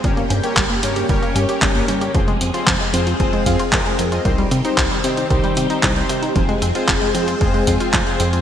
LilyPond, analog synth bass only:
\new Staff \with { instrumentName = "Analog synth bass" } { \clef bass \time 4/4 \key f \minor \tempo 4 = 114 g,,8 g,8 g,,8 g,8 g,,8 g,8 g,,8 g,8 | f,,8 f,8 f,,8 f,8 f,,8 f,8 f,,8 f,8 | c,8 c8 c,8 c8 c,8 c8 c,8 c8 | f,,8 f,8 f,,8 f,8 f,,8 f,8 f,,8 f,8 | }